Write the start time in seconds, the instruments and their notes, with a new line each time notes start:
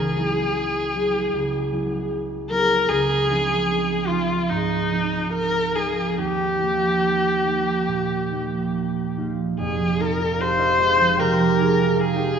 Already playing: harp C#2 B3 G#4, viola G#4
0.17 harp F#3 B3 E4 G#4
0.95 harp F#3 B3 E4 G#4
1.33 harp C#2
1.72 harp F#3 B3 E4 G#4
2.50 harp F#3 B3 E4 G#4, viola A#4
2.89 harp C#2, viola G#4
3.29 harp F3 C4 D#4 F4
4.07 harp F3 C4 D#4 F4, viola F4
4.49 harp G#2, viola D#4
4.90 harp F3 C4 D#4 F4
5.33 viola A#4
5.75 harp F3 C4 D#4 F4, viola G#4
6.18 harp D#2, viola G4
6.60 harp F3 A#3 D#4 F4
7.46 harp F3 A#3 D#4 F4
7.88 harp A#2
8.31 harp F3 A#3 D#4 F4
9.17 harp F3 A#3 D#4 F4
9.58 harp F1 F2, viola G#4
9.80 harp F3
10.00 harp D#4, viola A#4
10.20 harp F4
10.39 harp F4 G4 F5, viola C5
10.59 harp D#4 D#5
10.78 harp G#3 F4
11.01 harp F3
11.17 harp C3 G4 G5, viola A#4
11.38 harp F3 A#4 A#5
11.57 harp D#4 G#4 G#5
11.79 harp F4
11.96 harp F4 G4 F5
12.00 viola G#4
12.16 harp D#4 G4 G5
12.35 harp G#4 G#5